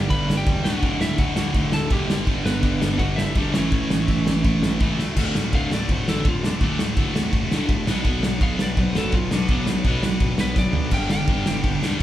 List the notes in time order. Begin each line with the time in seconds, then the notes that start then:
Already playing: G2 D3 G3 G5
0.10 G1 G2 D3 G3 B4 B5, kick, crash
0.28 G1, snare
0.37 G4 G5
0.46 E1 G2 D3 G3, kick, crash
0.64 D1 D2 A2 D3 F#4 F#5, snare
0.68 D3
0.82 D1 D2 A2 D3, kick, crash
1.01 D1 E4 E5, snare
1.18 D1 D2 A2 D3 F#4 F#5, kick, crash
1.36 D1 D2 A2 D3 F#4 F#5, snare
1.54 D1 D2 A2 D3, kick, crash
1.72 D1 A4 A5, snare
1.90 F#1 D2 A2 D3 G4 G5, kick, crash
2.08 G1 G2 D3 G3, snare
2.26 G1 G2 D3 G3, kick, crash
2.45 G1 B3 B4, snare
2.63 G1 G2 D3 G3, kick, crash
2.80 G1 G2 D3 G3, snare
2.99 G1 G2 D3 G3 F#4 F#5, kick, crash
3.16 G1 E4 E5, snare
3.35 G#1 G2 D3 G3 D5, kick, crash
3.39 G3 D4
3.53 A1 A2 E3 A3 C#4 C#5, snare
3.57 A3
3.71 A1 A2 E3 A3, kick, crash
3.90 A1, snare
4.07 A1 A2 E3 A3, kick, crash
4.24 A1 A2 E3 A3, snare
4.43 A1 A2 E3 A3, kick, crash
4.63 A1, snare
4.79 C#2 A2 E3 A3, kick, crash
4.84 A3
4.97 D2 A2 E3 A3, snare
5.15 D1 D2 A2 D3 A3 F#4, kick, crash
5.19 D3
5.35 D1 D2 A2, snare
5.53 D1 D2 A2 D3 F5, kick, ride
5.70 D1 D2 A2 D3 A3 F#4, snare
5.74 D5
5.89 D1 D2 A2 C5, kick, ride
6.08 A1 D2 A2 D3 A4, snare
6.25 D1 D2 A2 F4, kick, ride
6.43 D1 D2 A2 D4, snare
6.58 D1 D2 A2 D3 A3 F#4, kick, ride
6.63 A2 D3 D4
6.79 D2 A2, snare
6.97 D1 D2 A2 D3, kick, ride
7.12 D1 D2 A2 D3 A3 F#4, snare
7.16 A2
7.32 F#1 D2 A2, kick, ride
7.50 D1 D2 A2 D3, snare
7.68 D1 D2 A2, kick, ride
7.86 B1 B2 F#3 B3 D4 F#4 B4, snare
8.04 B1 B2 F#3 B3, kick, ride
8.23 B1 B2 F#3, snare
8.40 B1 B2 F#3 B3 D4 F#4 B4 F5, kick, ride
8.58 B1 B2 F#3 D5, snare
8.77 B1 B2 F#3 C5, kick, ride
8.94 F#1 B2 F#3 B3 A4, snare
9.12 B1 B2 F#3 F4, kick, ride
9.30 B1 B2 F#3 B3 D4 F#4 B4, snare
9.48 B1 B2 F#3 B3 D4, kick, ride
9.66 B2 F#3, snare
9.83 B1 B2 F#3 B3 D4 F#4 B4, kick, ride
9.87 F#3 B3
10.03 B1 B2 F#3, snare
10.20 D1 B2 F#3, kick, ride
10.38 B1 B2 F#3 B3 B4, snare
10.56 B1 B2 F#3 D5, kick, snare
10.73 B1 B2 F#3, floor tom
10.91 G1 G2 D3 G3 B3 D4 G4 G5, kick, crash
11.10 G1 G2 D3 G5, snare
11.27 G1 G2 D3 G3, kick, ride
11.46 G1 G2 D3 G3 B3 D4 G4, snare
11.63 G1 G2 D3, kick, ride
11.81 D1 G2 D3 G3, snare